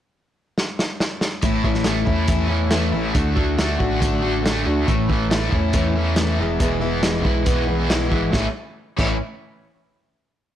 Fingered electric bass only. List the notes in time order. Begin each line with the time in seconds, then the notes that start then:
1.43 A1
2.08 E2
2.93 A1
3.15 D2
3.80 A1
4.66 D2
4.89 A1
5.52 E2
6.40 E1
6.60 E1
7.25 B1
8.12 G#1
8.33 A1
8.99 A1